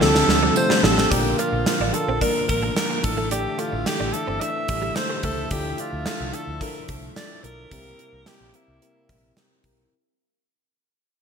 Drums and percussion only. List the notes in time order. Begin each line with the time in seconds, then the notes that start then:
0.01 snare
0.15 snare
0.29 snare
0.56 tambourine
0.70 snare
0.84 snare
0.98 snare
1.12 kick, closed hi-hat
1.39 closed hi-hat
1.66 snare, closed hi-hat
1.94 closed hi-hat
2.21 kick, closed hi-hat
2.49 kick, closed hi-hat
2.77 snare, closed hi-hat
3.04 kick, closed hi-hat
3.31 closed hi-hat
3.59 closed hi-hat
3.86 snare, closed hi-hat
4.14 closed hi-hat
4.41 closed hi-hat
4.68 kick, closed hi-hat
4.96 snare, closed hi-hat
5.23 kick, closed hi-hat
5.51 kick, closed hi-hat
5.78 closed hi-hat
6.06 snare, closed hi-hat
6.33 closed hi-hat
6.61 kick, closed hi-hat
6.88 kick, closed hi-hat
7.16 snare, closed hi-hat
7.44 closed hi-hat
7.71 kick, closed hi-hat
7.99 closed hi-hat
8.26 snare, closed hi-hat
8.54 closed hi-hat
8.82 closed hi-hat
9.09 kick, closed hi-hat
9.37 snare, closed hi-hat
9.64 kick, closed hi-hat